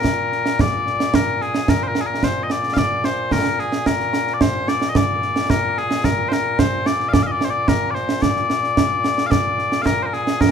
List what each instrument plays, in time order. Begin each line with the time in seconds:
Already playing: bagpipes A#2 A#4
0.04 concert bass drum, snare
0.32 snare
0.46 snare
0.59 bagpipes D5, concert bass drum, snare
0.87 snare
1.00 snare
1.14 bagpipes A#4, concert bass drum, snare
1.41 bagpipes G#4, snare
1.54 snare
1.68 bagpipes A#4, concert bass drum, snare
1.83 bagpipes C5
1.88 bagpipes A#4
1.95 snare
2.01 bagpipes G#4
2.06 bagpipes A#4
2.23 bagpipes C5, concert bass drum, snare
2.43 bagpipes D#5
2.50 bagpipes D5, snare
2.63 snare
2.74 bagpipes F5, concert bass drum, snare
2.78 bagpipes D5
3.04 bagpipes C5, snare
3.31 bagpipes A#4, concert bass drum, snare
3.59 bagpipes G#4, snare
3.72 snare
3.86 bagpipes A#4, concert bass drum, snare
4.00 snare
4.13 snare
4.27 snare
4.34 bagpipes D5
4.41 bagpipes C5, concert bass drum, snare
4.68 bagpipes D5, snare
4.82 snare
4.89 bagpipes D#5
4.95 bagpipes D5, concert bass drum, snare
5.22 snare
5.36 snare
5.50 bagpipes A#4, concert bass drum, snare
5.77 bagpipes G#4, snare
5.91 snare
6.04 bagpipes A#4, concert bass drum, snare
6.29 bagpipes C5, snare
6.33 bagpipes A#4
6.59 bagpipes C5, concert bass drum, snare
6.86 bagpipes D5, snare
7.00 snare
7.09 bagpipes F5
7.13 bagpipes D5, concert bass drum, snare
7.23 bagpipes F5
7.27 bagpipes D#5
7.31 bagpipes D5
7.41 bagpipes C5, snare
7.50 bagpipes D5
7.68 bagpipes A#4, concert bass drum, snare
7.91 bagpipes C5 D5
7.95 snare
8.09 snare
8.22 bagpipes D5, concert bass drum, snare
8.36 snare
8.50 snare
8.64 snare
8.77 concert bass drum, snare
9.04 snare
9.18 snare
9.26 bagpipes F5
9.31 bagpipes D5, concert bass drum, snare
9.59 snare
9.72 snare
9.82 bagpipes A#4 F5, concert bass drum, snare
10.03 bagpipes A#4 C5
10.13 bagpipes G#4, snare
10.27 snare
10.41 bagpipes A#4, concert bass drum, snare